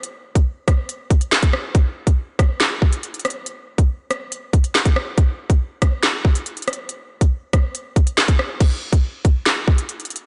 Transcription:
\new DrumStaff \with { instrumentName = "Drums" } \drummode { \time 4/4 \tempo 4 = 140 hh8. <hh bd>16 r8 <hh bd ss>8 hh8 <hh bd>16 hh16 <hc sn>16 <hh bd>16 ss8 | <hh bd>8. <hh bd>16 r8 <hh bd ss>8 <hc sn>8 bd16 hh16 hh16 hh32 hh32 <hh ss>32 hh16. | hh8. <hh bd>16 r8 <hh ss>8 hh8 <hh bd>16 hh16 <hc sn>16 <hh bd>16 ss8 | <hh bd>8. <hh bd>16 r8 <hh bd ss>8 <hc sn>8 bd16 hh16 hh16 hh32 hh32 <hh ss>32 hh16. |
hh8. <hh bd>16 r8 <hh bd ss>8 hh8 <hh bd>16 hh16 <hc sn>16 <hh bd>16 ss8 | <cymc hh bd>8. <hh bd>16 r8 <hh bd>8 <hc sn>8 bd16 hh16 hh16 hh32 hh32 hh32 hh16. | }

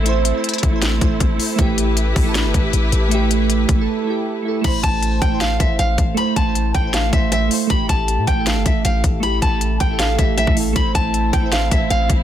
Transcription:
<<
  \new Staff \with { instrumentName = "Nylon-string guitar" } { \time 4/4 \key a \minor \tempo 4 = 157 r1 | r1 | r1 | b''8 a''4 g''8 f''8 e''8 f''8 r8 |
b''8 a''4 g''8 f''8 e''8 e''8 r8 | b''8 a''4 g''8 f''8 e''8 f''8 r8 | b''8 a''4 g''8 f''8 e''8 e''8 r8 | b''8 a''4 g''8 f''8 e''8 f''8 r8 | }
  \new Staff \with { instrumentName = "String section" } { \time 4/4 \key a \minor <a c' e'>1 | <e' g' b'>1~ | <e' g' b'>1 | r1 |
r1 | r1 | r1 | <a c' e'>1 | }
  \new Staff \with { instrumentName = "Synth keys" } { \time 4/4 \key a \minor <a e' c''>8 r16 <a e' c''>8. r16 <a e' c''>8 r16 <a e' c''>8. r16 <a e' c''>16 r16 | <a e' g'>4~ <a e' g'>16 r8 <a e' a'>4~ <a e' a'>16 r4 | <a e' g'>8 r16 <a e' g'>8. r16 <a e' a'>8 r16 <a e' g'>8. r16 <a e' a'>16 r16 | <a e' c''>4~ <a e' c''>16 r8 <a e' c''>4~ <a e' c''>16 r4 |
<a e' c''>8 r16 <a e' c''>8. r16 <a e' c''>8 r16 <a e' c''>8. r16 <a e' c''>16 r16 | <a e' g'>4~ <a e' g'>16 r8 <a e' a'>4~ <a e' a'>16 r4 | <a e' g'>8 r16 <a e' g'>8. r16 <a e' a'>8 r16 <a e' g'>8. r16 <a e' a'>16 r16 | <a e' c''>4~ <a e' c''>16 r8 <a e' c''>4~ <a e' c''>16 r4 | }
  \new Staff \with { instrumentName = "808-style bass" } { \clef bass \time 4/4 \key a \minor a,,8. r8. a,,4 a,,8 a,,8 r8 | a,,4. a,,8. g,,16 a,,8 a,,8 a,,8~ | a,,4. a,,8 r2 | a,,8 a,,4 a,,4 a,,8 a,,8 a,,8 |
r8 a,,4 a,,4 a,,4 r8 | a,,8 a,,8. a,16 a,,8. g,,16 a,,8 a,,8 a,,8~ | a,,8 a,,4 a,,4 a,,8. a,,8. | a,,8 a,,4 a,,4 a,,8 a,,8 a,,8 | }
  \new DrumStaff \with { instrumentName = "Drums" } \drummode { \time 4/4 hh8 hh8 hh32 hh32 hh32 hh32 <hh bd>8 <hh sn>8 <hh bd>8 <hh bd>8 hho8 | <hh bd>8 hh8 hh8 <hho bd>8 <hh sn>8 <hh bd>8 hh8 hh8 | hh8 hh8 hh8 <hh bd>8 r4 r4 | <cymc hh bd>8 <hh bd>8 hh8 <hh bd>8 <hh sn>8 <hh bd>8 hh8 <hh bd>8 |
hh8 <hh bd>8 hh8 <hh bd>8 <hh sn>8 <hh bd>8 hh8 hho8 | <hh bd>8 <hh bd>8 hh8 <hh bd>8 <hh sn>8 <hh bd>8 hh8 <hh bd>8 | hh8 <hh bd>8 hh8 <hh bd ss>8 <hh sn>8 <hh bd>8 hh16 bd16 hho8 | <hh bd>8 <hh bd>8 hh8 <hh bd>8 <hh sn>8 <hh bd>8 hh8 <hh bd>8 | }
>>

